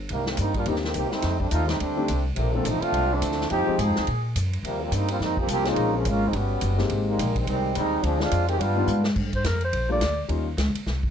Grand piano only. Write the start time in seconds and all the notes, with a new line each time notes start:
0.66 D#3 A#3 C4 D4 G4
1.96 D#3 A3 C4 D4 G4
2.54 F3 A#3 C4 D4 A4
3.66 F3 G#3 C4 D#4 G4
5.64 G#3 A#3 C4 C#4 F4
6.78 G#3 A#3 C4 D#4 G4
8.75 D#3 G3 B3 D4 F4
9.88 G3 A3 A#3 D4 F4
10.28 G3 A#3 C#4 D#4 F4